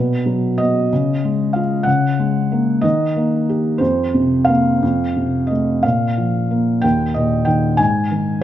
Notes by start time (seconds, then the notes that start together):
Already playing: B2 B4
0.26 F#3
0.58 B3 D#5
0.93 C#3
1.25 G#3
1.53 F4 F5
1.83 C#3 F#5
2.19 G#3
2.52 A#3
2.81 D#3 D#5
3.17 A#3
3.49 G4
3.78 F2 C5
4.14 C3
4.45 A#3 F5
4.82 F2
5.16 C3
5.47 A3 D#5
5.83 A#2 F5
6.18 F3
6.51 A#3
6.82 D#2 G5
7.14 A#2 D#5
7.45 D#3 G5
7.77 G#2 G#5
8.11 D#3